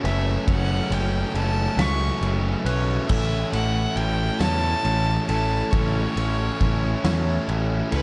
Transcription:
0.00 0.46 F#2 medium
0.00 0.46 C#3 medium
0.00 0.49 C#4 medium
0.00 8.02 E4 medium
0.00 3.07 A4 medium
0.00 0.45 C#5 medium
0.00 1.79 E5 medium
0.00 3.07 A5 medium
0.04 0.36 F#1 loud
0.04 0.47 F#3 medium
0.04 0.48 A3 medium
0.04 0.47 B4 medium
0.04 0.45 E5 medium
0.04 ride medium
0.46 0.80 F#1 medium
0.46 1.35 F#2 loud
0.46 1.34 C#3 loud
0.46 0.92 F#3 loud
0.46 0.91 A3 loud
0.46 0.90 C#4 loud
0.46 3.07 B4 medium
0.46 2.69 C#5 loud
0.46 0.95 F#5 loud
0.46 kick loud
0.46 ride loud
0.90 1.23 F#1 loud
0.90 1.35 F#3 medium
0.90 1.36 A3 medium
0.90 1.37 C#4 medium
0.90 1.36 G5 medium
0.90 ride medium
1.34 1.67 F#1 medium
1.34 1.79 C#3 medium
1.34 1.78 F#3 medium
1.34 1.79 A3 medium
1.34 1.78 C#4 medium
1.34 1.82 A5 loud
1.34 ride medium
1.77 2.10 C#2 loud
1.77 3.08 C#3 medium
1.77 2.66 F#3 medium
1.77 2.66 A3 medium
1.77 2.65 C#4 medium
1.77 5.28 E5 medium
1.77 2.24 C#6 loud
1.77 snare loud
1.77 ride loud
1.81 3.09 F#2 medium
2.21 2.54 F#1 loud
2.21 3.07 C#3 medium
2.21 2.66 F#3 medium
2.21 2.66 A3 medium
2.21 2.65 C#4 medium
2.21 ride medium
2.65 2.98 B1 loud
2.65 3.08 F#3 medium
2.65 3.10 A3 medium
2.65 3.11 C#4 medium
2.65 3.09 B4 medium
2.65 3.07 C#5 medium
2.65 ride medium
3.08 3.42 A1 loud
3.08 4.43 A2 loud
3.08 3.96 E3 loud
3.08 3.56 A3 loud
3.08 3.55 C#4 loud
3.08 3.53 E4 loud
3.08 8.02 A4 medium
3.08 5.28 A4 loud
3.08 8.02 C#5 medium
3.08 3.51 E5 loud
3.08 8.02 A5 medium
3.08 kick loud
3.08 crash loud
3.52 3.85 A1 loud
3.52 3.98 A3 medium
3.52 3.98 C#4 medium
3.52 3.99 E4 medium
3.52 3.97 F#5 loud
3.52 ride medium
3.96 4.29 A1 loud
3.96 4.42 E3 medium
3.96 4.42 A3 medium
3.96 4.40 C#4 medium
3.96 4.39 E4 medium
3.96 4.41 G5 loud
3.96 ride medium
4.39 4.73 E2 loud
4.39 5.71 A2 medium
4.39 5.72 E3 medium
4.39 5.30 A3 medium
4.39 5.28 C#4 medium
4.39 5.27 E4 medium
4.39 5.29 C#5 medium
4.39 5.26 A5 loud
4.39 snare loud
4.39 ride loud
4.83 5.17 A1 medium
4.83 5.72 E3 medium
4.83 5.30 A3 medium
4.83 5.28 C#4 medium
4.83 5.27 E4 medium
4.83 ride medium
5.27 5.61 A1 loud
5.27 5.73 C#4 medium
5.27 5.74 E4 medium
5.27 5.72 A4 medium
5.27 5.72 A5 loud
5.27 ride medium
5.31 5.72 A3 medium
5.71 6.05 A1 loud
5.71 6.60 A2 medium
5.71 6.59 E3 loud
5.71 6.18 A3 loud
5.71 6.17 C#4 loud
5.71 6.16 E4 loud
5.71 6.60 A4 loud
5.71 7.48 C#5 loud
5.71 kick loud
5.71 ride loud
6.16 6.49 A1 medium
6.16 6.60 A3 medium
6.16 6.61 C#4 medium
6.16 6.62 E4 medium
6.16 ride medium
6.61 6.93 A1 loud
6.61 7.05 E3 medium
6.61 7.05 A3 medium
6.61 7.04 C#4 medium
6.61 7.03 E4 medium
6.61 kick medium
6.61 ride medium
7.04 7.37 E2 loud
7.04 8.02 A2 medium
7.04 8.02 E3 medium
7.04 7.95 A3 medium
7.04 7.94 C#4 medium
7.04 7.93 E4 medium
7.04 7.93 C#5 medium
7.04 snare loud
7.04 ride loud
7.47 7.81 A1 medium
7.47 8.02 E3 medium
7.47 7.92 A3 medium
7.47 7.91 C#4 medium
7.47 7.90 E4 medium
7.47 ride medium
7.92 8.02 C#2 medium
7.92 8.02 A3 medium
7.92 8.02 C#4 medium
7.92 8.02 E4 medium
7.92 8.02 A4 medium
7.92 8.02 B4 loud
7.92 ride medium

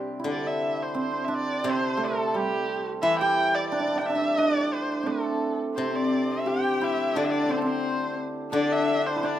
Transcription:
0.00 0.95 C3 soft
0.00 0.43 G3 soft
0.00 0.61 C4 soft
0.00 0.94 C4 medium
0.00 0.26 D4 soft
0.00 0.79 D4 soft
0.00 0.19 E4 medium
0.00 0.98 G4 soft
0.19 3.02 E4 soft
0.24 2.34 D3 soft
0.24 1.28 D4 medium
0.30 0.49 D5 medium
0.47 0.84 E5 medium
0.82 0.98 C5 medium
0.95 1.64 C4 medium
0.99 1.26 C5 medium
1.25 3.71 D4 medium
1.25 1.35 E5 medium
1.34 1.72 D5 medium
1.64 3.02 C3 medium
1.64 5.03 C4 medium
1.70 2.05 C5 medium
1.97 5.06 A3 medium
2.04 2.38 A4 medium
2.34 5.12 G3 medium
2.34 2.87 G4 medium
3.02 5.07 E3 medium
3.02 6.50 E4 medium
3.02 3.19 E5 loud
3.19 6.35 G4 medium
3.19 3.56 G5 loud
3.55 3.69 D5 medium
3.70 3.79 D4 medium
3.70 4.00 D5 medium
3.80 3.87 D4 medium
3.88 3.95 D4 medium
3.96 4.01 D4 medium
3.96 4.08 G5 medium
4.01 4.09 D4 medium
4.06 4.15 D4 medium
4.06 4.39 E5 medium
4.15 4.21 D4 medium
4.21 4.37 D4 medium
4.38 7.15 D4 medium
4.38 4.75 D5 medium
4.73 5.08 C5 medium
5.03 9.39 A3 medium
5.03 5.77 C4 medium
5.03 5.59 A4 medium
5.76 7.18 C3 soft
5.76 6.49 C4 medium
5.76 7.48 C4 medium
5.76 5.98 C5 medium
5.96 6.33 D5 medium
6.32 6.49 E5 medium
6.46 9.39 G4 medium
6.46 7.19 G4 medium
6.46 6.86 G5 medium
6.81 9.15 E4 medium
6.81 7.19 E5 medium
7.15 8.52 D3 soft
7.15 7.45 D4 medium
7.15 7.52 D4 medium
7.15 7.27 D5 medium
7.25 7.32 E5 medium
7.30 7.53 D5 medium
7.45 7.62 C4 medium
7.45 8.52 D4 soft
7.51 7.65 C4 medium
7.51 7.59 C5 medium
7.58 7.68 A4 medium
7.62 9.39 C4 medium
7.62 8.16 C4 medium
7.66 8.21 C5 medium
8.52 9.39 D3 medium
8.52 9.23 D4 medium
8.52 9.18 D4 medium
8.52 8.74 D5 medium
8.72 9.08 E5 medium
9.06 9.27 C5 medium
9.16 9.39 E4 medium
9.22 9.39 D4 medium
9.22 9.39 D5 medium

